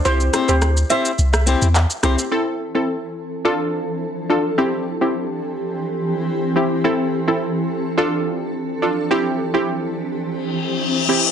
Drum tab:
HH |--x---x---x---x-|----------------|----------------|----------------|
SH |xxxxxxxxxxxxxxxx|----------------|----------------|----------------|
CP |------------x---|----------------|----------------|----------------|
SD |--r-r----r----r-|----------------|----------------|----------------|

HH |----------------|
SH |----------------|
CP |----------------|
SD |----------------|